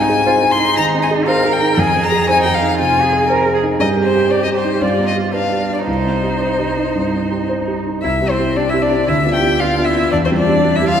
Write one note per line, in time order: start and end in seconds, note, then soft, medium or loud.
0.00 0.74 G#2 medium
0.00 0.20 C4 soft
0.00 0.09 D#4 soft
0.00 0.53 G#5 medium
0.09 0.37 G#4 soft
0.26 0.34 F4 medium
0.26 0.54 C5 soft
0.52 1.29 D#4 medium
0.52 0.76 C6 medium
0.60 0.87 D#4 soft
0.77 1.04 D#3 soft
0.77 0.85 A#5 medium
0.94 1.21 C4 soft
1.02 1.10 G#5 medium
1.11 1.38 G#4 soft
1.27 1.79 A#4 medium
1.27 1.55 C5 soft
1.27 1.54 F5 medium
1.45 1.72 G#4 soft
1.53 1.81 G5 medium
1.62 1.78 D#4 soft
1.77 2.76 F2 soft
1.77 2.30 G#4 medium
1.77 2.05 G#5 medium
1.95 2.22 C4 soft
2.04 2.29 A#5 medium
2.12 2.39 G#4 soft
2.29 2.78 D#4 medium
2.29 2.56 C5 soft
2.29 2.41 G#5 medium
2.43 2.72 G#4 soft
2.43 2.56 G5 medium
2.54 2.79 F5 medium
2.62 2.89 D#4 soft
2.79 3.06 C3 soft
2.79 3.04 F4 medium
2.79 3.29 G#5 medium
2.96 3.23 C4 soft
3.03 3.28 G#4 medium
3.13 3.40 G#4 soft
3.29 3.54 A#4 medium
3.29 3.57 C5 soft
3.46 3.73 G#4 soft
3.54 3.62 G#4 soft
3.63 3.80 D#4 soft
3.80 4.78 G2 soft
3.80 4.80 G4 medium
3.80 3.88 D#5 medium
3.96 4.24 C4 soft
4.05 4.32 C5 medium
4.13 4.40 G4 soft
4.30 4.57 C5 soft
4.30 4.43 D5 medium
4.44 4.74 G4 soft
4.44 4.49 D#5 medium
4.56 4.83 C5 soft
4.64 4.82 D#4 soft
4.81 5.84 G2 soft
4.81 5.35 F4 soft
4.81 5.07 D5 medium
4.99 5.27 B3 soft
5.08 5.16 D#5 medium
5.16 5.44 G4 soft
5.33 5.85 D4 soft
5.33 5.62 B4 soft
5.33 5.73 F5 soft
5.52 5.80 G4 soft
5.70 5.88 D4 soft
5.74 5.80 D5 soft
5.86 6.92 C2 soft
5.86 7.73 D#4 soft
5.86 7.47 C5 soft
6.05 6.34 C4 soft
6.23 6.52 G4 soft
6.41 6.70 C5 soft
6.59 6.88 G4 soft
6.77 7.06 D#4 soft
6.95 7.25 G2 soft
7.14 7.43 C4 soft
7.31 7.61 G4 soft
7.49 7.79 C5 soft
7.68 7.97 G4 soft
7.86 8.04 D#4 soft
8.03 8.21 C2 soft
8.03 8.12 E4 medium
8.03 8.32 E5 medium
8.21 8.37 C4 soft
8.21 8.37 E4 soft
8.21 8.37 G4 soft
8.30 8.56 C4 soft
8.30 8.58 C5 medium
8.38 8.54 C4 soft
8.38 8.54 E4 soft
8.38 8.55 G4 soft
8.56 8.72 C4 soft
8.56 8.62 D4 medium
8.56 8.72 E4 soft
8.56 8.72 G4 soft
8.56 8.71 D5 medium
8.69 8.82 E4 soft
8.69 8.83 E5 medium
8.74 8.89 C4 soft
8.74 8.89 E4 soft
8.74 8.90 G4 soft
8.82 9.07 D4 medium
8.82 9.10 D5 medium
8.91 9.07 C4 soft
8.91 9.07 E4 soft
8.91 9.07 G4 soft
9.08 9.25 D2 soft
9.08 9.16 E4 medium
9.08 9.33 E5 medium
9.25 9.41 B3 soft
9.25 9.41 D4 soft
9.25 9.41 F4 soft
9.34 9.63 G4 medium
9.34 9.61 G5 medium
9.42 9.58 B3 soft
9.42 9.58 D4 soft
9.42 9.59 F4 soft
9.60 9.76 B3 soft
9.60 9.76 D4 soft
9.60 9.76 F4 soft
9.60 9.88 F4 soft
9.60 9.86 F5 medium
9.78 9.93 B3 soft
9.78 9.94 D4 soft
9.78 9.94 F4 soft
9.85 10.14 E4 medium
9.85 10.11 E5 medium
9.95 10.10 B3 soft
9.95 10.11 D4 soft
9.95 10.11 F4 soft
10.11 10.29 E2 soft
10.11 10.24 D4 medium
10.11 10.17 D5 medium
10.25 10.37 C4 soft
10.25 10.30 C5 medium
10.30 10.45 G3 soft
10.30 10.45 C4 soft
10.30 10.45 G4 soft
10.37 10.77 D4 soft
10.37 10.77 D5 medium
10.47 10.62 G3 soft
10.47 10.62 C4 soft
10.47 10.62 G4 soft
10.63 10.79 G3 soft
10.63 10.79 C4 soft
10.63 10.79 G4 soft
10.76 10.91 E4 medium
10.76 10.88 E5 medium
10.81 10.96 G3 soft
10.81 10.97 C4 soft
10.81 10.97 G4 soft
10.88 11.00 F4 medium
10.88 11.00 F5 medium